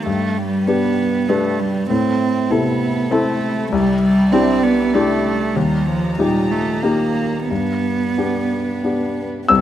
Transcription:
0.00 1.89 G3 soft
0.00 1.89 G4 soft
0.05 0.65 G2 soft
0.05 0.39 A3 medium
0.05 1.89 B4 soft
0.37 0.68 G3 medium
0.67 1.30 B3 medium
0.67 1.25 D4 soft
0.67 1.25 G4 soft
0.67 1.25 B4 soft
1.28 1.61 A3 medium
1.28 1.86 D4 soft
1.28 1.86 G4 soft
1.28 1.87 B4 soft
1.60 1.90 G3 medium
1.90 2.49 A2 medium
1.90 3.72 A3 soft
1.90 2.52 C4 medium
1.90 5.56 E4 medium
1.90 3.72 A4 soft
2.50 3.07 C3 soft
2.50 3.13 B3 medium
2.50 3.08 E4 soft
2.50 3.08 A4 soft
3.11 3.71 A3 medium
3.11 3.68 C4 soft
3.11 3.68 E4 soft
3.11 3.69 A4 medium
3.71 4.31 C2 medium
3.71 9.49 G3 medium
3.71 4.02 G3 medium
3.71 5.55 D5 medium
4.02 4.34 G3 medium
4.32 4.65 C4 medium
4.32 4.90 D4 medium
4.32 4.90 E4 soft
4.32 4.90 G4 soft
4.63 4.96 B3 medium
4.94 5.57 A3 medium
4.94 5.52 D4 soft
4.94 5.52 E4 soft
4.94 5.52 G4 medium
5.56 6.17 D#2 medium
5.56 5.89 G3 medium
5.56 7.50 D#4 medium
5.56 7.50 A#5 medium
5.87 6.18 F3 medium
6.19 6.79 A#2 soft
6.19 6.52 G3 medium
6.19 6.79 D#4 soft
6.19 6.79 G4 soft
6.51 6.85 A3 medium
6.83 7.46 A#3 soft
6.83 7.49 A#3 soft
6.83 7.46 D#4 soft
6.83 7.47 G4 soft
7.49 8.15 G2 soft
7.49 9.25 B3 medium
7.49 9.49 D4 soft
7.49 9.49 B4 soft
8.18 8.80 B3 soft
8.18 8.80 D4 soft
8.18 8.80 G4 soft
8.84 9.46 B3 soft
8.84 9.46 D4 soft
8.84 9.46 G4 soft
9.48 9.61 C2 medium
9.48 9.61 G3 medium
9.48 9.61 B3 medium
9.48 9.59 C4 medium
9.48 9.61 E4 medium
9.48 9.61 G4 soft
9.48 9.61 E6 medium

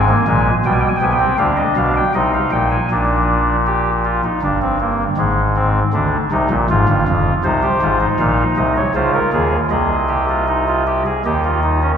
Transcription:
0.00 0.13 G#1 medium
0.00 0.13 G#2 medium
0.00 0.54 G#5 medium
0.08 0.25 A#3 medium
0.27 0.51 A#1 medium
0.27 0.50 A#2 medium
0.27 0.50 G#3 medium
0.65 0.89 B1 medium
0.65 0.88 B2 medium
0.65 0.88 G3 medium
0.65 0.73 G5 medium
0.72 0.80 G#5 medium
0.80 0.88 G5 medium
0.89 0.96 G#5 medium
0.96 1.04 G5 medium
1.01 1.25 C2 medium
1.01 1.25 C3 medium
1.01 1.18 B3 medium
1.01 1.12 G#5 medium
1.12 1.36 G5 medium
1.19 1.36 C4 medium
1.38 1.63 D2 medium
1.38 1.63 D3 medium
1.38 2.04 D4 medium
1.38 1.55 F5 medium
1.57 1.74 D#5 medium
1.77 2.00 B1 medium
1.77 2.00 B2 medium
1.77 1.93 F5 medium
1.96 2.13 G5 medium
2.14 2.38 C2 medium
2.14 2.38 C3 medium
2.14 2.80 D#4 medium
2.14 2.31 D#5 medium
2.34 2.50 F5 medium
2.52 2.76 A#1 medium
2.52 2.76 A#2 medium
2.52 2.69 G5 medium
2.71 2.88 G#5 medium
2.91 4.22 A#1 medium
2.91 4.22 A#2 medium
2.91 3.57 D4 medium
3.67 3.90 G4 medium
4.05 4.21 F4 medium
4.24 4.40 D#4 medium
4.42 5.08 G1 medium
4.42 5.08 G2 medium
4.42 4.59 D4 medium
4.62 4.78 C4 medium
4.80 5.04 A#3 medium
5.18 5.83 G#1 medium
5.18 5.83 G#2 medium
5.18 5.42 G#3 medium
5.56 5.80 C4 medium
5.93 6.17 D2 medium
5.93 6.17 D3 medium
5.93 6.17 D4 medium
6.31 6.48 C2 medium
6.31 6.48 C3 medium
6.31 6.55 D#4 medium
6.50 6.67 A#1 medium
6.50 6.67 A#2 medium
6.70 6.86 G#1 medium
6.70 6.86 G#2 medium
6.70 7.34 F4 medium
6.89 7.05 G1 medium
6.89 7.05 G2 medium
7.08 7.31 F1 medium
7.08 7.31 F2 medium
7.44 7.68 C2 medium
7.44 7.67 C3 medium
7.44 7.60 D#4 medium
7.44 8.08 C5 medium
7.63 7.79 G4 medium
7.82 8.05 G#1 medium
7.82 8.05 G#2 medium
7.82 7.98 F4 medium
8.01 8.82 D#4 medium
8.20 8.43 A#1 medium
8.20 8.43 A#2 medium
8.20 8.43 F5 medium
8.57 8.81 C2 medium
8.57 8.81 C3 medium
8.57 8.73 D#5 medium
8.77 8.93 C#5 medium
8.95 9.19 C#2 medium
8.95 9.19 C#3 medium
8.95 9.61 F4 medium
8.95 9.11 C5 medium
9.14 9.30 A#4 medium
9.33 9.57 D#2 medium
9.33 9.56 D#3 medium
9.33 9.57 G#4 medium
9.70 11.03 C2 medium
9.70 11.03 C3 medium
9.70 9.95 G#4 medium
9.70 11.03 D#5 medium
10.09 10.25 G4 medium
10.29 10.45 F4 medium
10.48 10.64 D#4 medium
10.68 10.84 F4 medium
10.87 11.03 G4 medium
11.06 11.22 G#4 medium
11.25 11.91 D#2 medium
11.25 11.91 D#3 medium
11.25 11.42 G4 medium
11.25 11.92 D#5 medium
11.44 11.61 F4 medium
11.63 11.80 D#4 medium
11.83 11.97 C#4 medium

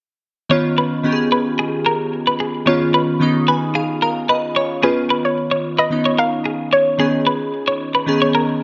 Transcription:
0.49 0.90 D#3 medium
0.49 0.90 B3 medium
0.49 0.90 C#4 medium
0.49 0.91 F4 medium
0.49 0.58 C#5 loud
0.78 0.85 B4 medium
1.03 1.83 D#3 medium
1.03 1.83 B3 medium
1.03 1.83 C#4 medium
1.03 1.12 G4 medium
1.12 1.87 G#4 medium
1.32 1.39 B4 medium
1.59 1.66 G#4 medium
1.86 1.93 A#4 medium
2.27 2.34 B4 medium
2.40 2.47 G#4 medium
2.66 3.06 D#3 medium
2.66 3.06 B3 medium
2.66 3.07 C#4 medium
2.66 3.07 F4 medium
2.66 2.74 C#5 loud
2.94 3.01 B4 medium
3.20 3.99 D#3 medium
3.20 3.99 B3 medium
3.20 4.00 C#4 medium
3.20 4.00 D#4 medium
3.48 3.55 B4 medium
3.48 3.73 G#5 medium
3.75 3.82 G#4 medium
3.75 4.00 F5 medium
4.02 4.09 A#4 medium
4.02 4.27 F5 medium
4.29 4.36 B4 medium
4.29 4.54 D#5 medium
4.56 4.81 C#5 medium
4.56 4.64 C#5 medium
4.82 5.61 D#3 medium
4.82 5.61 B3 medium
4.82 5.62 C#4 medium
4.82 5.62 F4 medium
4.82 4.91 G#4 loud
4.82 5.26 B4 medium
5.10 5.18 B4 medium
5.25 5.80 C#5 medium
5.51 5.58 C#5 medium
5.78 5.85 B4 medium
5.78 6.16 D#5 loud
5.90 6.69 D#3 medium
5.90 6.69 B3 medium
5.90 6.70 C#4 medium
5.90 6.70 D#4 medium
6.05 6.12 C#5 medium
6.18 6.26 A#4 medium
6.18 6.69 F5 loud
6.45 6.53 G#4 medium
6.73 6.80 C#5 medium
6.73 7.23 C#5 medium
6.98 7.77 D#3 medium
6.98 7.78 B3 medium
6.98 7.78 C#4 medium
6.98 7.07 G#4 loud
6.98 7.78 G#4 medium
7.27 7.34 B4 medium
7.68 7.74 C#5 medium
7.95 8.01 B4 medium
8.06 8.63 D#3 medium
8.06 8.63 B3 medium
8.06 8.63 C#4 medium
8.06 8.63 G#4 medium
8.22 8.28 C#5 medium
8.35 8.42 A#4 medium

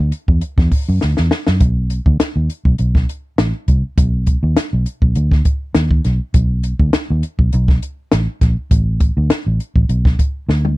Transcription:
0.00 0.11 D2 medium
0.12 closed hi-hat medium
0.28 0.40 E2 medium
0.28 kick medium
0.41 closed hi-hat medium
0.58 0.70 E2 loud
0.58 kick loud
0.58 snare soft
0.72 kick medium
0.72 open hi-hat medium
0.89 1.00 F#2 medium
1.01 1.16 D2 medium
1.01 snare medium
1.17 1.30 E2 medium
1.17 snare medium
1.31 snare medium
1.47 1.59 F#2 medium
1.47 snare medium
1.60 1.99 B1 loud
1.60 kick loud
1.60 closed hi-hat loud
1.90 closed hi-hat medium
2.06 2.18 D2 medium
2.06 kick medium
2.20 muted fingered electric bass stroke soft
2.20 snare loud
2.20 closed hi-hat medium
2.36 2.47 D#2 medium
2.50 closed hi-hat medium
2.65 2.77 B1 medium
2.65 kick medium
2.78 3.04 B1 medium
2.78 closed hi-hat medium
2.95 kick medium
2.95 snare soft
3.09 closed hi-hat medium
3.38 3.52 A1 medium
3.38 snare loud
3.38 closed hi-hat medium
3.68 3.81 C2 loud
3.68 kick medium
3.68 closed hi-hat medium
3.98 4.36 B1 loud
3.98 kick loud
3.98 closed hi-hat loud
4.27 kick medium
4.27 closed hi-hat medium
4.43 4.55 D#2 medium
4.57 snare loud
4.57 closed hi-hat medium
4.73 4.85 B1 medium
4.86 closed hi-hat medium
5.02 5.14 B1 medium
5.02 kick medium
5.15 5.41 D2 medium
5.15 closed hi-hat medium
5.31 kick medium
5.31 snare soft
5.45 kick medium
5.45 closed hi-hat medium
5.75 6.00 D#2 medium
5.75 snare loud
5.75 closed hi-hat medium
5.91 kick loud
6.05 6.18 B1 medium
6.05 snare soft
6.05 closed hi-hat medium
6.34 6.73 B1 loud
6.34 kick loud
6.34 closed hi-hat loud
6.63 closed hi-hat medium
6.79 6.91 D2 medium
6.79 kick medium
6.93 muted fingered electric bass stroke soft
6.93 snare loud
6.93 closed hi-hat medium
7.10 7.22 D#2 medium
7.23 closed hi-hat medium
7.39 7.51 B1 medium
7.39 kick medium
7.53 7.78 B1 loud
7.53 closed hi-hat medium
7.68 kick loud
7.68 snare soft
7.83 closed hi-hat medium
8.12 8.26 A1 medium
8.12 snare loud
8.12 closed hi-hat medium
8.41 8.55 A#1 medium
8.41 kick medium
8.41 snare soft
8.41 closed hi-hat medium
8.71 9.09 A1 loud
8.71 kick loud
8.71 closed hi-hat loud
9.00 kick medium
9.00 closed hi-hat medium
9.17 9.28 D2 loud
9.30 muted fingered electric bass stroke soft
9.30 snare loud
9.30 closed hi-hat medium
9.46 9.58 A1 medium
9.60 closed hi-hat medium
9.76 9.87 A1 medium
9.76 kick loud
9.89 10.14 B1 medium
9.89 closed hi-hat medium
10.05 kick loud
10.05 snare soft
10.19 kick medium
10.19 closed hi-hat medium
10.49 10.74 D2 medium
10.49 snare medium
10.65 high tom medium

